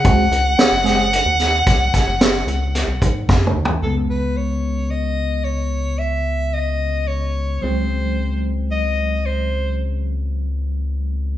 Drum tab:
HH |x--x--x--x--x--x--x--x--x--x--x--x--------|------------------------------------------|------------------------------------------|
SD |------o--o-----o--o--o--o-----o-----o-----|------------------------------------------|------------------------------------------|
T2 |--------------------------------------o---|------------------------------------------|------------------------------------------|
FT |----------------------------------------o-|------------------------------------------|------------------------------------------|
BD |o-----------------o--o-----------o--o-----|------------------------------------------|------------------------------------------|